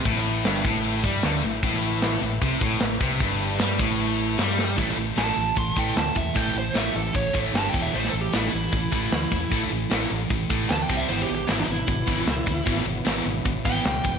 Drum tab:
CC |x---x---x---x---|x---x---x---x---|x---x---x---x---|----------------|
HH |----------------|----------------|----------------|o-o-o-o-o-o-o-o-|
SD |-o--o-------o---|-o--o-------o---|----o-------o-o-|-o--o-------o---|
BD |o-----o---o-----|o-------o-o---o-|o-----o---------|o-------o-o---o-|

CC |----------------|----------------|----------------|----------------|
HH |o-o-o-o-o-o-o-o-|o-o-o-o-o-o-o-o-|o-o-o-o-o-o-o-o-|o-o-o-o-o-o-o-o-|
SD |----o-------o---|-o--o-------o---|----o-------o---|----o-------o---|
BD |o-------o-o---o-|--------o-o---o-|o-------o-o---o-|--------o-o---o-|

CC |----------------|
HH |o-o-o-o-o-o-o-o-|
SD |-o--o-------o---|
BD |o-------o-o---o-|